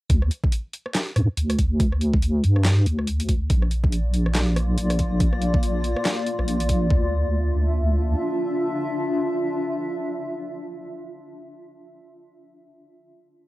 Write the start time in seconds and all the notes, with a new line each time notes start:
0.10 D2, kick, closed hi-hat
0.22 cross-stick
0.31 closed hi-hat
0.44 kick
0.52 closed hi-hat
0.73 closed hi-hat
0.86 cross-stick
0.95 snare, clap, closed hi-hat
1.16 G2, cross-stick, closed hi-hat
1.37 D2, closed hi-hat
1.50 cross-stick, closed hi-hat
1.59 kick, open hi-hat
1.80 kick, closed hi-hat
1.92 cross-stick
2.01 closed hi-hat
2.14 kick
2.22 closed hi-hat
2.44 G2, closed hi-hat
2.56 cross-stick
2.65 snare, clap, closed hi-hat
2.86 D2, closed hi-hat
2.99 cross-stick
3.07 closed hi-hat
3.20 closed hi-hat
3.29 kick, open hi-hat
3.50 A#1 A#3 F4 D5, kick, closed hi-hat
3.62 cross-stick
3.71 closed hi-hat
3.84 kick
3.92 closed hi-hat
4.14 closed hi-hat
4.26 cross-stick
4.35 snare, clap, closed hi-hat
4.56 cross-stick, closed hi-hat
4.78 A#1, closed hi-hat
4.90 cross-stick, closed hi-hat
4.99 kick, open hi-hat
5.20 kick, closed hi-hat
5.33 cross-stick
5.42 closed hi-hat
5.54 kick
5.63 closed hi-hat
5.84 closed hi-hat
5.96 cross-stick
6.05 snare, clap, closed hi-hat
6.27 closed hi-hat
6.39 A#1, cross-stick
6.48 closed hi-hat
6.60 closed hi-hat
6.69 kick, open hi-hat
6.91 D2 D4 F4 E5, kick